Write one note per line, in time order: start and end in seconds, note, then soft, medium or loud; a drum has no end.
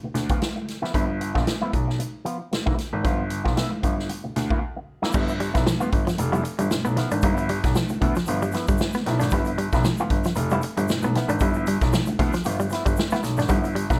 0.03 0.08 D2 soft
0.03 muted clean electric guitar stroke soft
0.14 0.37 D2 medium
0.14 snare soft
0.14 closed hi-hat medium
0.29 0.40 F3 medium
0.29 0.40 B3 medium
0.29 0.42 F4 medium
0.29 kick medium
0.29 closed hi-hat medium
0.41 muted clean electric guitar stroke soft
0.41 snare loud
0.41 closed hi-hat medium
0.56 muted clean electric guitar stroke soft
0.68 snare soft
0.68 closed hi-hat medium
0.82 0.92 F3 medium
0.82 0.93 B3 medium
0.82 0.93 E4 medium
0.82 snare soft
0.94 1.29 G1 medium
0.94 1.12 F3 medium
0.94 1.08 B3 medium
0.94 1.07 E4 medium
0.94 kick medium
0.94 closed hi-hat medium
1.08 muted clean electric guitar stroke soft
1.21 muted clean electric guitar stroke soft
1.21 closed hi-hat medium
1.34 1.45 A#1 medium
1.34 1.45 F3 medium
1.34 1.46 B3 medium
1.34 1.46 F4 medium
1.34 kick medium
1.34 snare soft
1.46 muted clean electric guitar stroke soft
1.46 snare loud
1.46 closed hi-hat medium
1.61 1.72 F3 medium
1.61 1.72 B3 medium
1.61 1.72 E4 medium
1.73 1.95 B1 medium
1.73 muted clean electric guitar stroke soft
1.73 kick medium
1.73 closed hi-hat medium
1.87 muted clean electric guitar stroke soft
1.87 snare soft
1.99 muted clean electric guitar stroke soft
1.99 closed hi-hat medium
2.25 2.40 F3 medium
2.25 2.39 B3 medium
2.25 2.39 F4 medium
2.25 closed hi-hat medium
2.40 muted clean electric guitar stroke soft
2.51 2.58 D2 soft
2.51 muted clean electric guitar stroke soft
2.51 snare medium
2.51 closed hi-hat medium
2.66 2.76 D2 medium
2.66 2.77 F3 medium
2.66 2.77 B3 medium
2.66 2.78 E4 medium
2.66 kick medium
2.78 muted clean electric guitar stroke soft
2.78 snare soft
2.78 closed hi-hat medium
2.93 3.02 G#1 medium
2.93 muted clean electric guitar stroke soft
3.04 3.39 G1 loud
3.04 3.22 F3 medium
3.04 3.23 B3 medium
3.04 3.23 F4 medium
3.04 kick medium
3.04 closed hi-hat medium
3.30 muted clean electric guitar stroke soft
3.30 closed hi-hat medium
3.44 3.55 B1 medium
3.44 3.55 F3 medium
3.44 3.56 B3 medium
3.44 3.56 F4 medium
3.44 kick medium
3.44 snare soft
3.56 3.74 F3 medium
3.56 3.71 B3 medium
3.56 3.71 E4 medium
3.56 snare loud
3.56 closed hi-hat medium
3.72 muted clean electric guitar stroke soft
3.82 4.05 G1 medium
3.82 3.98 F3 soft
3.82 3.97 B3 medium
3.82 3.97 F4 medium
3.82 kick medium
3.82 closed hi-hat medium
3.97 muted clean electric guitar stroke soft
3.97 snare soft
4.09 muted clean electric guitar stroke soft
4.09 closed hi-hat medium
4.24 4.29 D2 soft
4.24 muted clean electric guitar stroke soft
4.36 4.58 D2 medium
4.36 snare soft
4.36 closed hi-hat medium
4.50 4.61 F3 medium
4.50 4.61 B3 medium
4.50 4.63 F4 medium
4.50 kick medium
4.62 muted clean electric guitar stroke soft
4.76 muted clean electric guitar stroke medium
5.02 5.12 F3 medium
5.02 5.13 B3 medium
5.02 5.13 E4 medium
5.02 snare medium
5.13 5.48 G1 medium
5.13 5.32 F3 medium
5.13 5.24 G3 loud
5.13 5.32 B3 medium
5.13 5.32 E4 medium
5.13 kick loud
5.13 crash loud
5.13 shaker medium
5.28 muted clean electric guitar stroke medium
5.28 shaker medium
5.40 5.49 G3 medium
5.40 muted clean electric guitar stroke soft
5.40 closed hi-hat medium
5.54 5.65 B1 medium
5.54 5.64 F3 medium
5.54 5.65 B3 medium
5.54 5.65 E4 medium
5.54 kick medium
5.54 snare soft
5.54 closed hi-hat medium
5.54 shaker soft
5.66 5.75 F3 medium
5.66 snare loud
5.66 shaker medium
5.80 5.86 G1 soft
5.80 5.90 F3 medium
5.80 5.91 B3 medium
5.80 5.92 F4 medium
5.80 muted clean electric guitar stroke soft
5.80 shaker medium
5.92 6.05 G1 medium
5.92 muted clean electric guitar stroke soft
5.92 kick medium
5.92 closed hi-hat medium
6.07 6.14 F3 medium
6.07 muted clean electric guitar stroke medium
6.07 snare soft
6.07 closed hi-hat soft
6.07 shaker medium
6.18 6.41 F1 medium
6.18 muted clean electric guitar stroke soft
6.18 closed hi-hat loud
6.18 shaker medium
6.32 6.44 F3 medium
6.32 6.40 G3 loud
6.32 6.44 B3 medium
6.32 6.44 E4 medium
6.32 closed hi-hat soft
6.32 shaker medium
6.45 muted clean electric guitar stroke soft
6.45 closed hi-hat medium
6.45 shaker medium
6.59 6.69 G1 medium
6.59 6.66 G3 medium
6.59 muted clean electric guitar stroke soft
6.59 closed hi-hat medium
6.59 shaker medium
6.71 6.77 B1 soft
6.71 muted clean electric guitar stroke soft
6.71 snare loud
6.71 shaker medium
6.85 6.95 B1 medium
6.85 6.92 B3 medium
6.85 shaker medium
6.96 7.12 F3 medium
6.96 7.12 B3 medium
6.96 7.10 E4 medium
6.96 muted clean electric guitar stroke soft
6.96 snare soft
6.96 closed hi-hat medium
7.11 7.21 G#1 medium
7.11 7.19 D4 medium
7.11 muted clean electric guitar stroke soft
7.11 closed hi-hat soft
7.11 shaker medium
7.22 7.57 G1 loud
7.22 7.48 F3 medium
7.22 7.32 G3 loud
7.22 7.48 B3 medium
7.22 7.48 E4 medium
7.22 kick loud
7.22 closed hi-hat medium
7.22 shaker medium
7.37 muted clean electric guitar stroke soft
7.37 closed hi-hat soft
7.37 shaker medium
7.49 7.58 G3 medium
7.49 closed hi-hat medium
7.64 7.73 B1 medium
7.64 muted clean electric guitar stroke medium
7.64 kick medium
7.64 snare soft
7.64 closed hi-hat medium
7.64 shaker soft
7.75 7.85 F3 medium
7.75 muted clean electric guitar stroke soft
7.75 snare loud
7.75 shaker medium
7.89 7.95 D2 soft
7.89 muted clean electric guitar stroke medium
7.89 closed hi-hat soft
7.89 shaker medium
8.01 8.14 D2 medium
8.01 8.19 F3 medium
8.01 8.16 B3 loud
8.01 8.16 E4 loud
8.01 kick medium
8.01 closed hi-hat medium
8.15 8.23 F3 medium
8.15 muted clean electric guitar stroke medium
8.15 snare soft
8.15 closed hi-hat medium
8.15 shaker medium
8.26 8.50 G1 loud
8.26 8.45 F3 medium
8.26 8.42 B3 medium
8.26 8.42 F4 loud
8.26 closed hi-hat loud
8.26 shaker medium
8.42 8.49 G3 medium
8.42 muted clean electric guitar stroke medium
8.42 closed hi-hat soft
8.42 shaker medium
8.52 8.68 F3 medium
8.52 8.68 B3 medium
8.52 8.67 E4 medium
8.52 muted clean electric guitar stroke soft
8.52 snare soft
8.52 closed hi-hat medium
8.52 shaker medium
8.68 8.78 G1 medium
8.68 8.75 G3 medium
8.68 muted clean electric guitar stroke soft
8.68 kick loud
8.68 closed hi-hat medium
8.68 shaker medium
8.78 muted clean electric guitar stroke soft
8.78 snare loud
8.78 shaker medium
8.92 9.02 B3 medium
8.92 snare soft
8.92 closed hi-hat soft
8.92 shaker medium
9.06 9.18 B1 medium
9.06 9.21 F3 medium
9.06 9.21 B3 medium
9.06 9.20 E4 medium
9.06 muted clean electric guitar stroke soft
9.06 snare soft
9.06 closed hi-hat medium
9.20 9.30 G#1 medium
9.20 9.27 D4 medium
9.20 muted clean electric guitar stroke medium
9.20 snare soft
9.20 closed hi-hat medium
9.20 shaker medium
9.30 9.66 G1 medium
9.30 9.50 F3 medium
9.30 9.41 G3 loud
9.30 9.50 B3 medium
9.30 9.51 E4 loud
9.30 kick loud
9.30 closed hi-hat medium
9.30 shaker medium
9.45 muted clean electric guitar stroke soft
9.45 closed hi-hat soft
9.45 shaker soft
9.58 9.67 G3 medium
9.58 muted clean electric guitar stroke soft
9.58 closed hi-hat medium
9.72 9.82 B1 loud
9.72 9.83 F3 medium
9.72 9.84 B3 medium
9.72 9.84 E4 medium
9.72 kick medium
9.72 snare soft
9.72 closed hi-hat medium
9.72 shaker soft
9.84 9.93 F3 medium
9.84 muted clean electric guitar stroke soft
9.84 snare loud
9.84 shaker medium
9.97 10.03 G1 soft
9.97 10.11 F3 medium
9.97 10.11 B3 medium
9.97 10.12 F4 loud
9.97 muted clean electric guitar stroke soft
9.97 shaker medium
10.10 10.22 G1 medium
10.10 muted clean electric guitar stroke soft
10.10 kick medium
10.10 closed hi-hat medium
10.24 10.32 F3 medium
10.24 muted clean electric guitar stroke medium
10.24 snare soft
10.24 closed hi-hat medium
10.24 shaker medium
10.35 10.58 F1 medium
10.35 muted clean electric guitar stroke soft
10.35 closed hi-hat medium
10.35 shaker medium
10.50 10.62 F3 medium
10.50 10.58 G3 medium
10.50 10.63 B3 medium
10.50 10.63 E4 medium
10.50 closed hi-hat soft
10.50 shaker medium
10.62 muted clean electric guitar stroke soft
10.62 closed hi-hat medium
10.62 shaker medium
10.77 10.86 G1 loud
10.77 10.84 G3 medium
10.77 muted clean electric guitar stroke soft
10.77 closed hi-hat medium
10.77 shaker medium
10.88 10.94 B1 soft
10.88 muted clean electric guitar stroke soft
10.88 snare loud
10.88 shaker medium
11.02 11.12 B1 medium
11.02 11.11 B3 medium
11.02 shaker medium
11.15 11.30 F3 medium
11.15 11.30 B3 medium
11.15 11.29 E4 medium
11.15 muted clean electric guitar stroke soft
11.15 snare soft
11.15 closed hi-hat medium
11.28 11.38 G#1 loud
11.28 11.36 D4 medium
11.28 muted clean electric guitar stroke medium
11.28 closed hi-hat medium
11.28 shaker medium
11.39 11.75 G1 loud
11.39 11.65 F3 medium
11.39 11.50 G3 loud
11.39 11.65 B3 medium
11.39 11.66 E4 medium
11.39 kick loud
11.39 closed hi-hat medium
11.39 shaker medium
11.54 muted clean electric guitar stroke medium
11.54 shaker soft
11.67 11.76 G3 medium
11.67 closed hi-hat medium
11.67 shaker medium
11.81 11.91 B1 medium
11.81 muted clean electric guitar stroke soft
11.81 kick loud
11.81 snare soft
11.81 closed hi-hat medium
11.81 shaker soft
11.93 12.02 F3 medium
11.93 muted clean electric guitar stroke soft
11.93 snare loud
11.93 shaker medium
12.06 12.12 D2 soft
12.06 muted clean electric guitar stroke soft
12.06 closed hi-hat soft
12.06 shaker medium
12.19 12.31 D2 loud
12.19 12.37 F3 loud
12.19 12.34 B3 medium
12.19 12.33 E4 medium
12.19 kick medium
12.19 closed hi-hat medium
12.32 12.41 F3 medium
12.32 muted clean electric guitar stroke medium
12.32 snare soft
12.32 closed hi-hat medium
12.32 shaker medium
12.44 12.67 G1 medium
12.44 12.63 F3 medium
12.44 12.59 B3 medium
12.44 12.59 F4 loud
12.44 closed hi-hat loud
12.44 shaker medium
12.60 12.67 G3 medium
12.60 muted clean electric guitar stroke soft
12.60 closed hi-hat soft
12.60 shaker medium
12.70 12.86 F3 medium
12.70 12.86 B3 medium
12.70 12.85 E4 medium
12.70 muted clean electric guitar stroke soft
12.70 snare soft
12.70 closed hi-hat medium
12.70 shaker medium
12.86 12.95 G1 medium
12.86 12.92 G3 medium
12.86 muted clean electric guitar stroke soft
12.86 kick loud
12.86 closed hi-hat medium
12.86 shaker medium
12.96 muted clean electric guitar stroke soft
12.96 snare loud
12.96 shaker medium
13.10 13.22 F3 medium
13.10 13.19 B3 medium
13.10 13.22 B3 medium
13.10 13.23 E4 medium
13.10 closed hi-hat soft
13.10 shaker medium
13.15 snare soft
13.23 13.35 B1 medium
13.23 muted clean electric guitar stroke soft
13.23 snare soft
13.23 closed hi-hat medium
13.23 shaker medium
13.37 13.47 G#1 medium
13.37 13.45 D4 medium
13.37 muted clean electric guitar stroke soft
13.37 snare soft
13.37 closed hi-hat medium
13.37 shaker medium
13.48 13.83 G1 loud
13.48 13.67 F3 medium
13.48 13.58 G3 loud
13.48 13.67 B3 medium
13.48 13.68 E4 medium
13.48 kick loud
13.48 closed hi-hat medium
13.48 shaker medium
13.64 muted clean electric guitar stroke soft
13.64 closed hi-hat soft
13.64 shaker medium
13.75 13.84 G3 medium
13.75 muted clean electric guitar stroke soft
13.75 closed hi-hat medium
13.90 13.99 B1 medium
13.90 13.99 F3 soft
13.90 13.99 B3 medium
13.90 13.99 E4 medium
13.90 kick medium
13.90 snare soft
13.90 closed hi-hat medium
13.90 shaker soft